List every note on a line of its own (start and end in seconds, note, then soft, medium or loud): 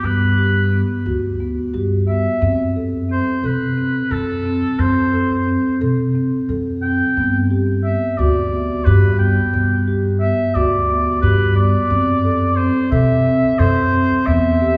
0.03 0.81 G2 medium
0.03 0.21 B3 medium
0.03 1.06 B4 medium
0.38 0.56 G4 medium
0.72 0.90 B3 medium
1.06 1.57 D2 medium
1.06 1.24 F#4 medium
1.40 1.58 B3 medium
1.74 2.25 G2 medium
1.74 1.92 G4 medium
2.08 2.26 B3 medium
2.08 2.72 E5 medium
2.42 3.19 F#2 medium
2.42 2.60 C4 medium
2.76 2.94 A4 medium
3.09 3.27 C4 medium
3.09 3.47 C5 medium
3.43 3.95 C3 medium
3.43 3.61 A4 medium
3.43 4.13 B4 medium
3.78 3.95 C4 medium
4.11 4.62 F#2 medium
4.11 4.29 A4 medium
4.11 4.81 A4 medium
4.45 4.63 C4 medium
4.79 5.56 F#2 medium
4.79 4.97 C4 medium
4.79 5.81 C5 medium
5.13 5.31 A4 medium
5.47 5.65 C4 medium
5.81 6.32 C3 medium
5.81 5.99 A4 medium
6.15 6.33 C4 medium
6.49 7.00 F#2 medium
6.49 6.67 A4 medium
6.82 7.01 C4 medium
6.82 7.46 G5 loud
7.17 7.94 G2 medium
7.17 7.35 B3 medium
7.51 7.68 G4 medium
7.84 8.03 B3 medium
7.84 8.19 E5 medium
8.18 8.70 D2 medium
8.18 8.37 F#4 medium
8.18 8.87 D5 medium
8.52 8.70 B3 medium
8.85 9.37 G2 medium
8.85 9.04 G4 medium
8.85 9.18 B4 medium
9.19 9.38 B3 medium
9.19 9.83 G5 medium
9.53 10.30 G2 medium
9.53 9.71 B3 medium
9.88 10.05 G4 medium
10.20 10.39 B3 medium
10.20 10.56 E5 loud
10.55 11.06 D2 medium
10.55 10.73 F#4 medium
10.55 11.21 D5 medium
10.89 11.07 B3 medium
11.22 11.74 G2 medium
11.22 11.40 G4 medium
11.22 11.54 B4 loud
11.56 11.75 B3 medium
11.56 12.58 D5 medium
11.90 12.67 F#2 medium
11.90 12.08 C4 medium
12.24 12.42 A4 medium
12.56 12.76 C4 medium
12.56 12.91 C5 medium
12.91 13.43 C3 medium
12.91 13.10 A4 medium
12.91 13.60 E5 medium
13.26 13.44 C4 medium
13.59 14.11 F#2 medium
13.59 13.78 A4 medium
13.59 14.28 C5 loud
13.93 14.11 C4 medium
14.26 14.77 E2 medium
14.26 14.45 B3 medium
14.26 14.77 E5 loud
14.61 14.77 G4 medium